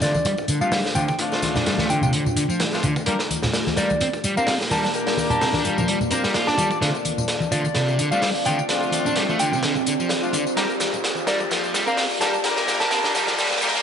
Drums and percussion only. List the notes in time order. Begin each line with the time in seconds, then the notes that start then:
0.02 snare, closed hi-hat, tambourine
0.14 tambourine, high conga
0.25 kick, closed hi-hat, tambourine
0.38 kick, tambourine
0.48 closed hi-hat, tambourine
0.61 tambourine
0.72 snare, open hi-hat, tambourine
0.85 snare, tambourine
0.95 closed hi-hat, tambourine, high conga
1.08 kick, tambourine
1.19 kick, closed hi-hat, tambourine
1.32 snare, tambourine
1.42 snare, closed hi-hat, tambourine, high conga
1.55 snare, tambourine, low conga
1.66 snare, closed hi-hat, tambourine
1.78 snare, tambourine, high conga
1.89 kick, closed hi-hat, tambourine
2.02 tambourine, high conga, low conga
2.13 closed hi-hat, tambourine
2.26 tambourine, low conga
2.36 closed hi-hat, tambourine
2.50 tambourine
2.60 snare, closed hi-hat, tambourine
2.73 snare, tambourine
2.83 kick, closed hi-hat, tambourine, high conga
2.96 kick, tambourine
3.06 kick, closed hi-hat, tambourine
3.19 snare, tambourine
3.31 closed hi-hat, tambourine, high conga
3.43 snare, tambourine, low conga
3.53 snare, closed hi-hat, tambourine
3.67 snare, tambourine, high conga
3.76 snare, closed hi-hat, tambourine
3.90 tambourine, high conga
4.01 kick, closed hi-hat, tambourine
4.13 kick, tambourine
4.24 closed hi-hat, tambourine
4.37 tambourine
4.47 snare, open hi-hat, tambourine
4.61 snare, tambourine
4.71 snare, open hi-hat, tambourine, high conga
4.84 snare, tambourine
4.94 closed hi-hat, tambourine
5.07 snare, open hi-hat, tambourine
5.17 snare, tambourine, high conga
5.30 closed hi-hat, tambourine, low conga
5.41 snare, open hi-hat, tambourine
5.53 snare, tambourine, high conga
5.65 closed hi-hat, tambourine
5.78 tambourine, high conga, low conga
5.88 closed hi-hat, tambourine
6.01 tambourine, low conga
6.11 kick, closed hi-hat, tambourine
6.24 snare, tambourine
6.34 snare, closed hi-hat, tambourine
6.47 snare, tambourine
6.58 kick, closed hi-hat, tambourine, high conga
6.71 kick, tambourine
6.82 snare, closed hi-hat, tambourine
6.95 tambourine
7.05 closed hi-hat, tambourine, high conga
7.18 tambourine, low conga
7.28 snare, closed hi-hat, tambourine
7.40 tambourine, high conga
7.52 closed hi-hat, tambourine
7.64 tambourine, high conga
7.75 snare, closed hi-hat, tambourine
7.88 tambourine
7.99 closed hi-hat, tambourine
8.12 tambourine
8.22 snare, open hi-hat, tambourine
8.35 tambourine
8.45 closed hi-hat, tambourine, high conga
8.59 tambourine
8.69 snare, closed hi-hat, tambourine
8.83 tambourine
8.91 closed hi-hat, tambourine, high conga
9.06 tambourine, low conga
9.16 snare, closed hi-hat, tambourine
9.28 tambourine, high conga
9.39 closed hi-hat, tambourine
9.52 tambourine, high conga, low conga
9.63 snare, closed hi-hat, tambourine
9.74 tambourine, low conga
9.86 closed hi-hat, tambourine
10.00 tambourine
10.09 snare, closed hi-hat, tambourine
10.23 tambourine
10.33 closed hi-hat, tambourine, high conga
10.47 tambourine
10.57 snare, closed hi-hat, tambourine
10.70 tambourine
10.80 snare, closed hi-hat, tambourine, high conga
10.93 tambourine, low conga
11.04 snare, closed hi-hat, tambourine
11.15 tambourine, high conga
11.27 snare, closed hi-hat, tambourine
11.40 tambourine, high conga
11.51 snare, closed hi-hat, tambourine
11.64 tambourine
11.74 snare, closed hi-hat, tambourine
11.87 tambourine
11.97 snare, open hi-hat, tambourine
12.11 tambourine
12.19 snare, closed hi-hat, tambourine, high conga
12.34 tambourine
12.44 snare, closed hi-hat, tambourine
12.57 snare, tambourine
12.67 snare, closed hi-hat, tambourine, high conga
12.80 snare, tambourine, low conga
12.91 snare, closed hi-hat, tambourine
13.04 snare, tambourine, high conga
13.15 snare, closed hi-hat, tambourine
13.27 snare, tambourine, high conga, low conga
13.38 snare, closed hi-hat, tambourine
13.45 snare
13.51 snare, tambourine, low conga
13.56 snare
13.61 snare, closed hi-hat, tambourine
13.68 snare
13.75 snare, tambourine